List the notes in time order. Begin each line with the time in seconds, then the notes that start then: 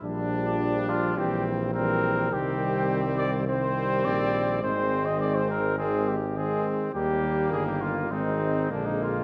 0.02 A#1 F3 G3 D4
0.89 F4
1.16 A#1 E3 G3 C4 G4
1.73 E3 G3 C4 A#4
2.32 C2 D#3 G3 C4 G4
3.18 D5
3.47 D#3 G3 C4 C5
4.05 A#1 D5
4.62 G#1 D#3 G#3 C4 C5
5.06 D#5
5.20 D5
5.34 C5
5.50 A#4
5.78 D#3 G#3 C4 G#4
6.08 G4
6.35 D#3 G#3 C4 G#4
6.93 D#2 D#3 G3 A#3 G4
7.52 G1 G#4
7.66 G4
7.81 F4
8.10 G#1 D#3 G#3 C4 D#4
8.70 A#1 D3 G#3 A#3 D4
8.85 D#4
9.03 F4